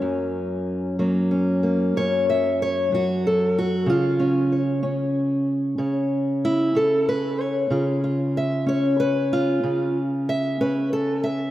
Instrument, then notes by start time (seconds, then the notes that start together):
steel-string acoustic guitar
Already playing: F#3 A#3 C#4
0.02 F#2
0.99 F#3 A#3
1.31 C#4
1.63 A#3
1.96 F#2 C#5
2.30 E5
2.62 C#5
2.92 F#3 F#4
3.27 A4
3.58 F#4
3.86 C#3 F4
4.20 C#4
4.52 C#5
4.83 C#4
5.78 C#3 C#5
6.45 E4
6.75 C#4 A4
7.09 B4
7.41 C#5
7.70 C#3 F4
8.04 F4
8.37 E5
8.66 C#4 C#5
9.00 B4
9.33 F4
9.63 C#3
10.29 E5
10.61 C#4 B4
10.93 A4
11.24 E5